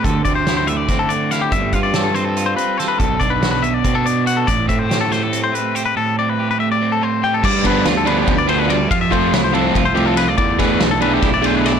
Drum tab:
CC |-------|-------|-------|-------|
RD |-------|-------|-------|-------|
HH |xxxxxxx|xxxxxxx|xxxxxxx|xxxxxxx|
SD |--o-o-o|--o---o|--o----|--oo---|
BD |oo--o--|oo-----|oo--o--|oo-----|

CC |-------|x------|-------|-------|
RD |-------|-xxxxxx|xxxxxxx|xxxxxxx|
HH |-------|-------|-------|-------|
SD |-------|--o----|--o---o|-oo-o-o|
BD |-------|oo--o--|oo--o--|oo--o--|